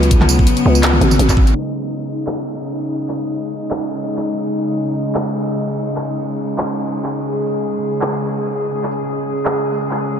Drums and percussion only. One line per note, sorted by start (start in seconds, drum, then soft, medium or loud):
0.03 closed hi-hat soft
0.11 kick loud
0.11 closed hi-hat medium
0.21 clap soft
0.21 mid tom medium
0.29 tambourine medium
0.39 kick loud
0.47 closed hi-hat medium
0.57 closed hi-hat soft
0.75 tambourine soft
0.83 clap loud
0.83 closed hi-hat medium
0.93 mid tom medium
1.01 closed hi-hat soft
1.11 mid tom soft
1.11 tambourine soft
1.19 closed hi-hat medium
1.29 kick medium
1.29 clap soft
1.29 tambourine soft
1.37 kick loud
1.47 closed hi-hat soft
1.73 tambourine medium
2.19 tambourine soft
2.27 clap loud
3.09 clap soft
3.17 tambourine medium
3.63 tambourine soft
3.71 clap loud
3.99 tambourine soft
4.17 clap soft
4.61 tambourine medium
5.06 tambourine soft
5.15 clap loud
5.96 clap soft
6.04 tambourine medium
6.50 tambourine soft
6.58 clap loud
6.86 tambourine soft
7.04 clap soft
7.48 tambourine medium
7.94 tambourine soft
8.01 clap loud
8.83 clap soft
8.92 tambourine medium
9.37 tambourine soft
9.45 clap loud
9.73 tambourine soft
9.78 tambourine soft
9.82 tambourine soft
9.86 tambourine soft
9.91 clap soft